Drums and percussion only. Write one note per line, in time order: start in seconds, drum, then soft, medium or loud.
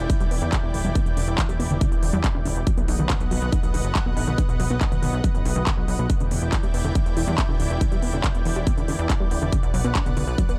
0.10 kick loud
0.10 closed hi-hat medium
0.20 closed hi-hat soft
0.31 open hi-hat loud
0.53 kick loud
0.53 clap loud
0.53 closed hi-hat loud
0.74 open hi-hat medium
0.85 closed hi-hat soft
0.95 kick loud
0.95 closed hi-hat medium
1.06 closed hi-hat soft
1.17 open hi-hat loud
1.38 kick loud
1.38 clap loud
1.38 closed hi-hat medium
1.49 closed hi-hat soft
1.60 open hi-hat medium
1.71 closed hi-hat soft
1.81 kick loud
1.81 closed hi-hat medium
1.92 closed hi-hat soft
2.03 open hi-hat loud
2.24 kick loud
2.24 clap loud
2.24 closed hi-hat medium
2.46 open hi-hat loud
2.56 closed hi-hat soft
2.67 kick loud
2.67 closed hi-hat medium
2.78 closed hi-hat soft
2.88 open hi-hat loud
2.99 closed hi-hat soft
3.10 kick loud
3.10 clap loud
3.10 closed hi-hat medium
3.20 closed hi-hat soft
3.31 open hi-hat medium
3.42 closed hi-hat soft
3.52 kick loud
3.52 closed hi-hat medium
3.63 closed hi-hat soft
3.74 open hi-hat loud
3.85 closed hi-hat soft
3.95 kick loud
3.95 clap loud
3.95 closed hi-hat medium
4.17 open hi-hat loud
4.38 kick loud
4.38 closed hi-hat medium
4.49 closed hi-hat soft
4.60 open hi-hat loud
4.70 closed hi-hat soft
4.81 kick loud
4.81 clap loud
4.81 closed hi-hat medium
4.92 closed hi-hat soft
5.03 open hi-hat medium
5.13 closed hi-hat soft
5.24 kick loud
5.24 closed hi-hat medium
5.35 closed hi-hat soft
5.45 open hi-hat loud
5.56 closed hi-hat soft
5.67 kick loud
5.67 clap loud
5.67 closed hi-hat medium
5.88 open hi-hat loud
6.10 kick loud
6.10 closed hi-hat medium
6.20 closed hi-hat soft
6.31 open hi-hat loud
6.42 closed hi-hat soft
6.53 kick loud
6.53 clap loud
6.53 closed hi-hat medium
6.63 closed hi-hat soft
6.74 open hi-hat medium
6.85 closed hi-hat soft
6.95 kick loud
6.95 closed hi-hat medium
7.06 closed hi-hat soft
7.17 open hi-hat loud
7.28 closed hi-hat soft
7.38 kick loud
7.38 clap loud
7.38 closed hi-hat medium
7.60 open hi-hat medium
7.70 closed hi-hat soft
7.81 kick loud
7.81 closed hi-hat medium
7.92 closed hi-hat soft
8.03 open hi-hat loud
8.13 closed hi-hat soft
8.24 kick loud
8.24 clap loud
8.24 closed hi-hat medium
8.35 closed hi-hat soft
8.45 open hi-hat medium
8.56 closed hi-hat soft
8.67 kick loud
8.67 closed hi-hat medium
8.78 closed hi-hat soft
8.88 open hi-hat loud
8.99 closed hi-hat soft
9.10 kick loud
9.10 clap loud
9.10 closed hi-hat medium
9.31 open hi-hat medium
9.42 closed hi-hat soft
9.52 kick loud
9.52 closed hi-hat medium
9.63 closed hi-hat soft
9.74 open hi-hat loud
9.95 kick loud
9.95 clap loud
9.95 closed hi-hat medium
10.06 closed hi-hat soft
10.17 open hi-hat medium
10.28 closed hi-hat soft
10.38 kick loud
10.38 closed hi-hat medium
10.49 closed hi-hat soft